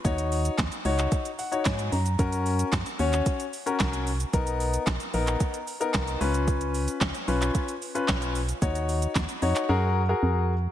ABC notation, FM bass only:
X:1
M:4/4
L:1/16
Q:1/4=112
K:F#
V:1 name="FM bass" clef=bass
D,,4 D,, z C,,2 z4 G,,2 F,,2 | F,,4 F,, z D,,2 z4 ^B,,,4 | B,,,4 B,,, z A,,,2 z4 ^B,,,2 C,,2- | C,,4 C,, z B,,,2 z4 B,,,4 |
D,,4 D,, z E,, z F,,4 E,,4 |]